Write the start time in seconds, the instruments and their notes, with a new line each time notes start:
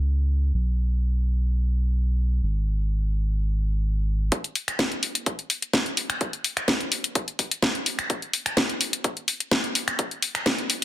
Already playing: analog synth bass C#2
0.54 analog synth bass B1
2.43 analog synth bass G#1
4.32 kick, closed hi-hat
4.44 closed hi-hat
4.55 open hi-hat
4.68 finger snap, closed hi-hat
4.79 kick, snare, closed hi-hat
4.92 closed hi-hat
5.03 open hi-hat
5.15 closed hi-hat
5.26 kick, closed hi-hat
5.39 closed hi-hat
5.50 open hi-hat
5.62 closed hi-hat
5.73 kick, snare, closed hi-hat
5.86 closed hi-hat
5.97 open hi-hat
6.10 finger snap, closed hi-hat
6.21 kick, closed hi-hat
6.33 closed hi-hat
6.44 open hi-hat
6.57 finger snap, closed hi-hat
6.68 kick, snare, closed hi-hat
6.81 closed hi-hat
6.92 open hi-hat
7.04 closed hi-hat
7.15 kick, closed hi-hat
7.28 closed hi-hat
7.39 kick, open hi-hat
7.51 closed hi-hat
7.62 kick, snare, closed hi-hat
7.75 closed hi-hat
7.86 open hi-hat
7.99 finger snap, closed hi-hat
8.10 kick, closed hi-hat
8.22 closed hi-hat
8.33 open hi-hat
8.46 finger snap, closed hi-hat
8.57 kick, snare, closed hi-hat
8.69 closed hi-hat
8.81 open hi-hat
8.93 closed hi-hat
9.04 kick, closed hi-hat
9.17 closed hi-hat
9.28 open hi-hat
9.40 closed hi-hat
9.51 kick, snare, closed hi-hat
9.64 closed hi-hat
9.75 open hi-hat
9.88 finger snap, closed hi-hat
9.99 kick, closed hi-hat
10.11 closed hi-hat
10.22 open hi-hat
10.35 finger snap, closed hi-hat
10.46 kick, snare, closed hi-hat
10.59 closed hi-hat
10.70 open hi-hat